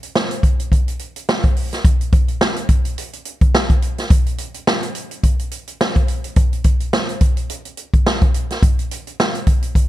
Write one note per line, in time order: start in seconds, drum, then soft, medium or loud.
0.03 closed hi-hat soft
0.15 snare loud
0.31 closed hi-hat medium
0.43 kick medium
0.43 closed hi-hat medium
0.60 closed hi-hat medium
0.72 kick medium
0.72 closed hi-hat medium
0.88 closed hi-hat medium
0.99 closed hi-hat medium
1.16 closed hi-hat soft
1.29 snare loud
1.44 kick loud
1.44 closed hi-hat soft
1.56 open hi-hat medium
1.73 snare soft
1.73 closed hi-hat medium
1.85 kick loud
1.85 closed hi-hat medium
2.01 closed hi-hat soft
2.12 kick loud
2.12 closed hi-hat medium
2.28 closed hi-hat soft
2.41 snare loud
2.56 closed hi-hat medium
2.69 kick medium
2.69 closed hi-hat medium
2.85 closed hi-hat medium
2.98 closed hi-hat medium
3.13 closed hi-hat medium
3.25 closed hi-hat medium
3.41 kick medium
3.41 closed hi-hat soft
3.55 snare loud
3.70 kick medium
3.70 closed hi-hat medium
3.82 closed hi-hat medium
3.98 snare soft
3.98 closed hi-hat medium
4.10 kick loud
4.10 closed hi-hat medium
4.26 closed hi-hat medium
4.38 closed hi-hat medium
4.54 closed hi-hat medium
4.67 snare loud
4.83 closed hi-hat medium
4.95 closed hi-hat medium
5.11 closed hi-hat soft
5.24 kick medium
5.24 closed hi-hat medium
5.39 closed hi-hat soft
5.51 closed hi-hat medium
5.67 closed hi-hat soft
5.81 snare loud
5.96 kick medium
5.96 closed hi-hat soft
6.08 closed hi-hat medium
6.24 closed hi-hat medium
6.36 kick loud
6.36 closed hi-hat medium
6.53 closed hi-hat soft
6.64 kick medium
6.64 closed hi-hat medium
6.80 closed hi-hat soft
6.93 snare loud
7.09 closed hi-hat medium
7.21 kick loud
7.21 closed hi-hat medium
7.37 closed hi-hat medium
7.50 closed hi-hat medium
7.65 closed hi-hat soft
7.77 closed hi-hat medium
7.94 kick medium
7.94 closed hi-hat soft
8.06 snare loud
8.22 kick loud
8.22 closed hi-hat soft
8.34 closed hi-hat medium
8.50 snare soft
8.50 closed hi-hat soft
8.63 kick loud
8.63 closed hi-hat medium
8.79 closed hi-hat medium
8.91 closed hi-hat medium
9.07 closed hi-hat soft
9.20 snare loud
9.35 closed hi-hat medium
9.47 kick medium
9.47 closed hi-hat medium
9.63 closed hi-hat medium
9.75 kick medium
9.75 closed hi-hat medium